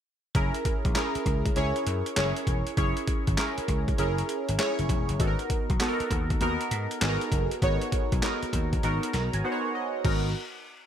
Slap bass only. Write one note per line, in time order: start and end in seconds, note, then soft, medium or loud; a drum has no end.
0.35 0.50 F#1 loud
0.85 0.93 A#1 medium
1.15 muted slap bass stroke soft
1.26 1.48 C#2 medium
1.56 1.71 C#2 loud
1.87 2.01 F#2 loud
2.17 2.32 F#1 medium
2.47 2.62 E1 medium
2.77 2.92 F#1 medium
3.28 3.35 G#1 medium
3.58 muted slap bass stroke soft
3.68 3.91 C#2 medium
3.99 4.21 F#1 medium
4.49 4.57 G#1 medium
4.79 4.87 F#1 medium
4.89 5.04 E1 medium
5.09 5.17 F#1 medium
5.20 5.34 G#1 loud
5.70 5.78 B1 medium
6.00 muted slap bass stroke soft
6.11 6.33 D#2 medium
6.41 6.56 D#2 loud
6.71 6.86 G#2 loud
7.02 7.16 G#1 medium
7.32 7.46 F#1 medium
7.62 7.77 G#1 loud
8.12 8.20 B1 medium
8.43 muted slap bass stroke soft
8.53 8.76 D#2 medium
8.83 8.98 G#1 loud
9.14 9.28 B1 medium
9.33 9.41 G#1 medium
10.05 10.33 G#1 medium